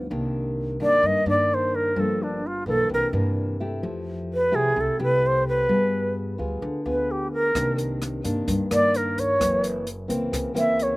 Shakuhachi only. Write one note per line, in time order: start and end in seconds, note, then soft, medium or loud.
0.82 1.08 D5 medium
1.06 1.28 D#5 loud
1.29 1.56 D5 medium
1.54 1.77 C5 medium
1.75 2.02 A#4 medium
2.00 2.24 A4 medium
2.23 2.48 D4 medium
2.47 2.67 F4 medium
2.68 2.89 A4 medium
2.94 3.06 A#4 medium
4.34 4.57 B4 medium
4.55 4.82 G#4 medium
4.81 5.01 A4 medium
5.03 5.28 B4 medium
5.27 5.48 C5 medium
5.48 6.12 B4 medium
6.89 7.13 B4 medium
7.11 7.32 G4 medium
7.33 7.75 A#4 medium
8.73 8.98 D5 medium
8.97 9.21 A#4 medium
9.20 9.64 C#5 medium
10.58 10.84 E5 medium
10.83 10.97 C#5 medium